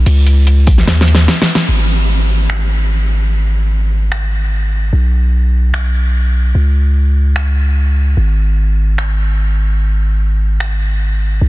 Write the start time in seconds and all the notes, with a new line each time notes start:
0.06 C#2, closed hi-hat, ride
0.27 closed hi-hat
0.47 closed hi-hat
0.67 kick, open hi-hat
0.78 snare
0.87 D#2, snare, closed hi-hat
1.01 snare
1.08 closed hi-hat
1.15 snare
1.28 snare, closed hi-hat
1.42 snare
1.48 closed hi-hat
1.55 snare
1.68 G#1
2.50 finger snap
4.12 finger snap
4.93 B1
5.74 finger snap
6.55 C#2
7.36 finger snap
8.17 G#1
8.98 finger snap
10.60 finger snap
11.41 B1